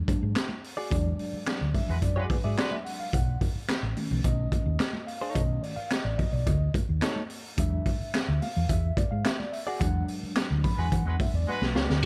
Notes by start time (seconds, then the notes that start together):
0.07 F#3 G#3 D4, kick, closed hi-hat, muted conga
0.23 G#2
0.36 snare, clap, closed hi-hat, high conga
0.49 high conga
0.64 open hi-hat
0.77 F#4 G#4 D5
0.90 E2 F#3 G#3 D4 D5, kick, closed hi-hat, muted conga
1.19 open hi-hat
1.33 muted fingered electric bass stroke
1.47 snare, clap, closed hi-hat, high conga
1.61 D2
1.74 E5, kick, open hi-hat, muted conga, low conga
1.88 E2 G#3 F#4 B4
2.02 F#2 D5, kick, closed hi-hat
2.16 G#3 F#4 G#4 B4 D5
2.30 B4, kick, open hi-hat, muted conga
2.44 G#2 F#4 G#4 D5 E5
2.57 G#3 F#4 G#4 B4 D5, snare, clap, closed hi-hat, high conga
2.71 E5, high conga
2.85 F#5, open hi-hat
3.00 F5
3.13 B1 F#5, kick, closed hi-hat, muted conga
3.41 kick, open hi-hat
3.55 muted fingered electric bass stroke
3.68 snare, clap, closed hi-hat, high conga
3.83 A1
3.96 D#3 A3 C#4, open hi-hat, muted conga
4.11 B1, low conga
4.24 B1 D#5, kick, closed hi-hat
4.52 kick, closed hi-hat, muted conga
4.66 D#2
4.80 snare, clap, closed hi-hat, high conga
4.93 high conga
5.07 F5, open hi-hat
5.21 D#4 A4 C#5
5.35 B1 D#3 A3 C#4 D#5, kick, closed hi-hat, muted conga
5.63 D5, open hi-hat
5.76 F5, muted fingered electric bass stroke
5.90 D#5, snare, clap, closed hi-hat, high conga
6.04 A1 D5
6.18 D#5, kick, open hi-hat, muted conga, low conga
6.32 B1 D5
6.46 D2 D#5, kick, closed hi-hat
6.74 kick, closed hi-hat, muted conga
6.89 D#2
7.02 D#4 A4 C#5, snare, clap, closed hi-hat, high conga
7.16 high conga
7.30 open hi-hat
7.57 E2 F#3 G#3 D4 E5, kick, closed hi-hat, muted conga
7.86 kick, open hi-hat
8.01 muted fingered electric bass stroke
8.14 snare, clap, closed hi-hat, high conga
8.28 D2
8.42 F5, open hi-hat, muted conga
8.56 E2, low conga
8.69 E2 E5, kick, closed hi-hat
8.97 D5, kick, closed hi-hat, muted conga
9.11 G#2 F5
9.25 E5, snare, clap, closed hi-hat, high conga
9.39 D5, high conga
9.53 E5, open hi-hat
9.67 F#4 G#4 D5 F#5
9.80 E2 F#3 G#3 D4 F#5, kick, closed hi-hat, muted conga
10.08 open hi-hat
10.23 muted fingered electric bass stroke
10.36 snare, clap, closed hi-hat, high conga
10.51 D2
10.64 B5, kick, open hi-hat, muted conga, low conga
10.77 E2 G#3 F#4 B4 G#5
10.92 E3 F#5, kick, closed hi-hat
11.05 E2 G#3 F#4 B4
11.20 E5, kick, open hi-hat, muted conga
11.34 E2 D5
11.47 G#3 F#4 B4, high conga
11.61 B1, snare, high conga
11.75 C#2 F#4 G#4 D5, snare
11.90 D2, snare